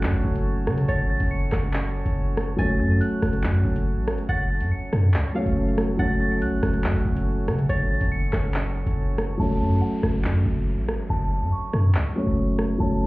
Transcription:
Already playing: F#3 A3 C#4 A4 C#5 F#5 F#6
0.03 F#2, clap
0.14 F#1
0.25 F#1
0.36 closed hi-hat
0.67 C#3, cross-stick, closed hi-hat
0.78 closed hi-hat
0.88 F#1 C#5 A6, closed hi-hat
1.10 A1 A6
1.20 F#1, closed hi-hat
1.31 C#7
1.52 F#1, cross-stick, clap, closed hi-hat
1.73 clap, closed hi-hat
2.05 F#1, closed hi-hat
2.37 cross-stick, closed hi-hat
2.56 F#1 F#3 A3 C#4 A4 C#5 G#5 A6, closed hi-hat
2.80 F#2 A6
3.01 F#6, closed hi-hat
3.22 F#1, cross-stick, closed hi-hat
3.33 closed hi-hat
3.44 F#2, clap
3.65 F#1
3.76 closed hi-hat
3.97 A1
4.07 cross-stick, closed hi-hat
4.18 closed hi-hat
4.29 F#1 F#5 A6, closed hi-hat
4.51 A6
4.61 F#2, closed hi-hat
4.71 C#7
4.93 F#2, cross-stick, closed hi-hat
5.14 C#2, clap, closed hi-hat
5.35 F#3 A3 C#4 A4 C#5 F5
5.46 F#1, closed hi-hat
5.78 cross-stick, closed hi-hat
5.97 F#1 F#3 A3 C#4 A4 C#5 F#5 A6, closed hi-hat
6.21 A6
6.42 C#2 F#6, closed hi-hat
6.52 F#1
6.63 F#1, cross-stick, closed hi-hat
6.73 closed hi-hat
6.84 F#2, clap
6.95 F#1
7.05 F#1
7.16 closed hi-hat
7.48 C#3, cross-stick, closed hi-hat
7.58 closed hi-hat
7.69 F#1 C#5 A6, closed hi-hat
7.91 A1 A6
8.01 F#1, closed hi-hat
8.12 C#7
8.33 F#1, cross-stick, clap, closed hi-hat
8.54 clap, closed hi-hat
8.86 F#1, closed hi-hat
9.18 cross-stick, closed hi-hat
9.37 F#1 F#3 A3 C#4 A4 C#5 A5, downlifter
9.61 F#2 A5
9.81 F#5
10.03 F#1, cross-stick
10.25 F#2, clap
10.46 F#1
10.78 A1
10.88 cross-stick
11.10 F#1 A5
11.31 A5
11.42 F#2
11.52 C#6
11.73 F#2, cross-stick
11.95 C#2, clap
12.16 F#3 A3 C#4 A4 C#5
12.27 F#1
12.59 cross-stick
12.78 F#1 F#3 A3 C#4 A4 C#5 A5
13.02 A5

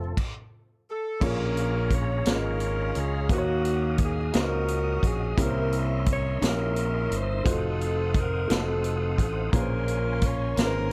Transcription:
Already playing: F1 F3 A3 C4 F4 A4
0.17 kick, crash
0.89 A4
1.20 A#1 A#2 A#3 C#4 F4 G#4 A#4 C#5 F5 A#5, kick, crash
1.57 closed hi-hat
1.90 C#5, kick, closed hi-hat
2.25 G#1 A#3 C#4 F4 G#4 A#4 C#5, snare, closed hi-hat
2.35 D#5
2.60 closed hi-hat
2.95 C#2 G#4, closed hi-hat
3.29 D#2 D#3 A#3 C#4 D#4 F#4 C5 D#5 F5 D#6, kick, closed hi-hat
3.38 C#5
3.65 closed hi-hat
3.98 G#4, kick, closed hi-hat
4.32 C#2 A#3 C#4 D#4 F#4 C5 F5, snare, closed hi-hat
4.37 A#4
4.68 closed hi-hat
5.03 A#1 G#4, kick, closed hi-hat
5.37 C2 C3 A#3 C#4 E4 G4 A#4 E5 C6, kick, closed hi-hat
5.46 C5
5.72 closed hi-hat
6.06 C#5, kick, closed hi-hat
6.40 A#1 A#3 C#4 E4 G4 C#5, snare, closed hi-hat
6.45 C#4 E4 A#4
6.76 closed hi-hat
7.11 G1 C5, closed hi-hat
7.44 F1 A3 D#4 F4 F#4 C5 F5 F#5 D#6, kick, closed hi-hat
7.49 C4 A4
7.81 closed hi-hat
8.14 A#4, kick, closed hi-hat
8.47 F1 A3 C4 D#4 F4 F#4 A4, snare, closed hi-hat
8.52 A4
8.84 closed hi-hat
9.18 A1 A4, kick, closed hi-hat
9.52 A#1 A#2 A#3 C#4 F4 G#4 A#4 B4 G#5 C6, kick, closed hi-hat
9.61 C5
9.88 closed hi-hat
10.22 C#5, kick, closed hi-hat
10.57 G#1 A#3 C#4 F4 G#4 A#4 B4, snare, closed hi-hat
10.66 C5

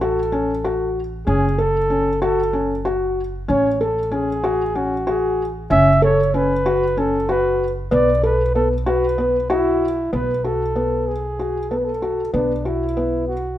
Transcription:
Already playing: A1
0.01 F#4 A4
0.32 C#4
0.64 F#4
1.27 F#1 C#4 G#4
1.58 A4
1.90 C#4
2.22 F#4 A4
2.53 C#4
2.85 F#4
3.48 A1 C#4 C#5
3.81 A4
4.11 C#4 G#4
4.44 F#4
4.75 C#4 F#4
5.07 F#4 G#4
5.70 F#1 C#4 E5
6.02 A4 C#5
6.34 C#4 B4
6.66 F#4
6.97 C#4 A4
7.29 F#4 B4
7.91 B1 B3 D5
8.23 A4 B4
8.55 B3 A4
8.86 F#4 B4
9.18 B3
9.50 E4 F#4
10.13 B1 B3 B4
10.44 F#4 A4
10.76 B3
11.08 G#4
11.39 F#4
11.70 B3 A4
11.78 B4
11.84 A4
12.02 F#4
12.34 B1 B3 D4
12.65 E4 F#4
12.97 B3
13.28 F#4

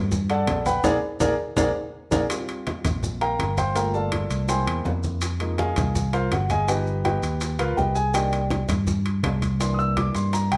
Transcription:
Already playing: G2
0.12 high bongo, high conga, low conga, maracas
0.30 A4 D5 F#5 A5, high bongo, high conga, high timbale, maracas
0.46 A#1, high bongo, low bongo, high conga, high timbale, low timbale, maracas
0.66 B4 F#5 G5 B5, high bongo, high conga, high timbale, maracas
0.83 A#1 G#4 A#4 D5, low bongo, high conga, high timbale, maracas
1.20 A#1 G#4 A#4 D5, low bongo, high conga, high timbale, maracas
1.56 A#1 G#4 A#4 D5, low bongo, high conga, high timbale, maracas
2.11 A#1 G#4 A#4 D5, low bongo, high conga, high timbale, maracas
2.29 G3 C4 F4, high bongo, high conga, high timbale, maracas
2.48 high conga, high timbale, maracas
2.67 high bongo, high conga, high timbale, maracas
2.84 A#1, high bongo, high conga, low conga, high timbale, maracas
3.03 high bongo, high conga, low conga, maracas
3.21 A#4 F5 G5 A#5, high bongo, high conga, high timbale, maracas
3.39 G1, high bongo, low bongo, high conga, high timbale, maracas
3.57 C5 F5 G5 C6, high bongo, high conga, high timbale, maracas
3.75 A3 A#3 F4 A#4 F5 G5 A#5, high bongo, high conga, high timbale, maracas
3.94 A4 D5 F5 A5, high conga, maracas
4.12 high bongo, high conga, high timbale, maracas
4.29 C2, high bongo, high conga, high timbale, maracas
4.48 G#3 A#3 E4 C5 G5 G#5 C6, high bongo, high timbale, maracas
4.66 E2, high bongo, high timbale, maracas
4.85 F2, high bongo, low bongo, high conga, low timbale, maracas
5.03 high bongo, high conga, maracas
5.21 high bongo, high conga, high timbale, maracas
5.40 F3 G#3 A#3 D#4, high conga, high timbale, maracas
5.58 G#4 D#5 F5 G#5, high bongo, high conga, high timbale, maracas
5.76 C2, high bongo, high conga, low conga, high timbale, maracas
5.95 high bongo, high conga, low conga, maracas
6.13 F4 A#4 C5 F5, high bongo, high conga, high timbale, maracas
6.31 G1 F#4 F#5, high bongo, low bongo, high conga, high timbale, maracas
6.50 G#4 D#5 F5 G#5, high bongo, high conga, high timbale, maracas
6.67 F3 B3 D#4 G4 B4 D#5 G5, high bongo, high conga, high timbale, maracas
6.87 high conga, maracas
7.05 G4 B4 D#5 G5, high bongo, high conga, high timbale, maracas
7.22 D#2, high bongo, high conga, high timbale, maracas
7.41 high bongo, high conga, high timbale, maracas
7.59 C#2 F4 A#4 B4 F5, high bongo, high conga, high timbale, maracas
7.77 C2 G4 B4 D#5 G5, high bongo, low bongo, high conga, maracas
7.95 G#4 G#5, high bongo, maracas
8.13 D#3 A#3 D4 G4 D5 D#5 G5, high bongo, high timbale, maracas
8.33 high conga, high timbale, maracas
8.51 high bongo, high conga, high timbale, maracas
8.68 G2, high bongo, high conga, low conga, high timbale, maracas
8.87 high bongo, high conga, low conga, maracas
9.05 high bongo, high conga, high timbale, maracas
9.23 C2, high bongo, low bongo, high conga, high timbale, low timbale, maracas
9.42 high bongo, high conga, high timbale, maracas
9.60 E3 A#3 D4 C6, high bongo, high conga, high timbale, maracas
9.74 D#6
9.79 E6, high conga, maracas
9.97 D6, high bongo, high conga, high timbale, maracas
10.15 G2 C6, high bongo, high conga, high timbale, maracas
10.33 A#5, high bongo, high conga, high timbale, maracas
10.52 C2 G5, high bongo, high conga, high timbale, maracas

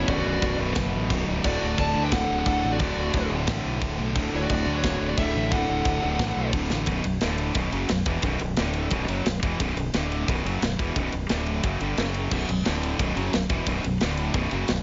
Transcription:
Already playing: D3 B3 F#4 B4
0.08 B0 B1 F#2 B2 F#4 D5, kick, crash
0.25 B0
0.42 B0 B1 F#2 B2, kick, crash
0.59 B0 B1 F#2 B2
0.75 F#1 B1 F#2 B2, kick, snare, crash
0.94 A1
1.10 B0 B1 F#2 B2, kick, crash
1.27 C#1 B1 F#2 B2
1.44 D1 D2 A2 D3 A3 F#4 A4 D5, kick, crash
1.61 D1
1.78 D1 D2 A2 D3 D5 A5, kick, crash
1.95 D2 A2 D3
2.04 B4 G5
2.11 D1 D2 A2 D3 A4 F#5, kick, snare, crash
2.30 D1
2.39 A4 F#5
2.45 D1 D2 A2 D3 A4 F#5, kick, crash
2.63 A1 D2 A2 D3
2.72 F#4 D5
2.79 D1 D2 A2 D3 F#4 D5, kick, crash
2.96 D1
3.13 D1 D2 A2 D3, kick, crash
3.29 D1 D2 A2 D3
3.47 A1 D2 A2 D3, kick, snare, crash
3.65 B1
3.80 D1 D2 A2 D3, kick, crash
3.98 B1 D2 A2 D3
4.14 D1 D2 A2 D3, kick, crash
4.33 D1 E4 C#5
4.42 F#4 D5
4.49 D1 D2 A2 D3 F#4 D5, kick, crash
4.65 D2 A2 D3
4.75 F#4 C#5
4.84 D1 D2 A2 D3, kick, snare, crash
5.01 D1
5.09 F#4 D5
5.17 D1 D2 A2 D3 A4 E5, kick, crash
5.35 A1 D2 A2 D3
5.50 D1 D2 A2 D3 A4 F#5, kick, crash
5.69 D1
5.85 D1 D2 A2 D3, kick, crash
6.02 D1 D2 A2 D3
6.19 A1 D2 A2 D3, kick, snare, crash
6.36 B1
6.53 D1 D2 A2 D3, kick, crash
6.70 A1 D2 A2 D3, snare
6.86 B0 B1 F#2 B2, kick, ride
7.04 B0 B1 F#2, ride
7.21 D1 D2 A2 D3, snare, ride
7.38 ride
7.55 B0 B1 F#2 B2, kick, ride
7.72 F#1 F#2 C#3 F#3, ride
7.89 B0 B1 F#2, snare, ride
8.06 E1 E2 B2 E3, kick, ride
8.22 B0 B1 F#2 B2, kick, ride
8.39 B0 B1 F#2, ride
8.57 D1 D2 A2 D3, snare, ride
8.74 ride
8.90 B0 B1 F#2 B2, kick, ride
9.08 F#1 F#2 C#3 F#3, ride
9.26 B0 B1 F#2, snare, ride
9.43 E1 E2 B2 E3, kick, ride
9.59 B0 B1 F#2 B2, kick, ride
9.76 B0 B1 F#2, ride
9.94 D1 D2 A2 D3, snare, ride
10.12 ride
10.28 B0 B1 F#2 B2, kick, ride
10.45 F#1 F#2 C#3 F#3, ride
10.61 B0 B1 F#2, snare, ride
10.78 E1 E2 B2 E3, kick, ride
10.96 B0 B1 F#2 B2, kick, ride
11.12 B0 B1 F#2, ride
11.29 D1 D2 A2 D3, snare, ride
11.46 ride
11.63 F#1 F#2 C#3 F#3, kick, ride
11.80 G1 G2 D3 G3, ride
11.97 F#1 F#2 C#3 F#3, snare, ride
12.14 ride
12.31 B0 B1 F#2 B2, kick, crash
12.49 B0 B1 F#2, ride
12.65 D1 D2 A2 D3, snare, ride
12.83 ride
12.99 B0 B1 F#2 B2, kick, ride
13.16 F#1 F#2 C#3 F#3, ride
13.33 B0 B1 F#2, snare, ride
13.49 E1 E2 B2 E3, kick, ride
13.66 B0 B1 F#2 B2, kick, ride
13.84 B0 B1 F#2, ride
14.01 D1 D2 A2 D3, snare, ride
14.17 ride
14.34 B0 B1 F#2 B2, kick, ride
14.51 F#1 F#2 C#3 F#3, ride
14.68 B0 B1 F#2, snare, ride

